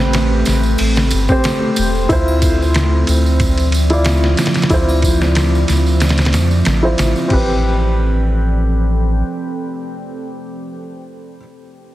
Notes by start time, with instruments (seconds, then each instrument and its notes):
Already playing: sub bass A1, ambient pad A3 C4 A4, upright piano C4 G4 B4 C5
0.13 snare, ride, tambourine
0.45 sub bass A1, snare, ride, tambourine
0.63 tambourine
0.78 sub bass A1, open hi-hat, tambourine, triangle
0.96 snare, tambourine
1.10 sub bass G1, ride, tambourine
1.28 upright piano C4 G4 C5, kick, tambourine
1.44 snare, ride, tambourine
1.76 sub bass E1, ride, tambourine
1.95 tambourine
2.09 sub bass D2, ambient pad F3 C4 D5, upright piano E4 F4 C5, kick, ride, tambourine
2.28 triangle
2.42 kick, ride, tambourine
2.62 tambourine
2.74 snare, ride, tambourine
3.07 sub bass D2, ride, tambourine
3.26 tambourine
3.40 kick, ride, tambourine
3.58 ride, tambourine
3.72 ride, tambourine
3.90 upright piano E4 F4 D5, ride, tambourine
4.05 snare, ride, tambourine
4.24 snare
4.37 snare, ride, tambourine
4.46 snare, ride
4.54 snare, ride, tambourine
4.62 snare, ride
4.70 sub bass D2, upright piano E4 F4, kick, ride, tambourine
4.74 upright piano C5
4.89 tambourine, triangle
5.02 kick, ride, tambourine
5.21 snare, tambourine
5.35 snare, ride, tambourine
5.55 tambourine
5.68 sub bass D2, snare, ride, tambourine
5.86 tambourine
6.00 snare, ride, tambourine, triangle
6.09 snare, ride
6.18 snare, ride, tambourine
6.25 snare, ride
6.33 sub bass F2, snare, ride, tambourine
6.51 tambourine
6.65 sub bass A1, snare, ride, tambourine
6.83 upright piano E4 F4 C5
6.98 sub bass A1, snare, ride, tambourine
7.16 tambourine
7.28 sub bass A1, upright piano C4 G4, ambient pad C4 A4 G5, kick, crash
7.33 upright piano B4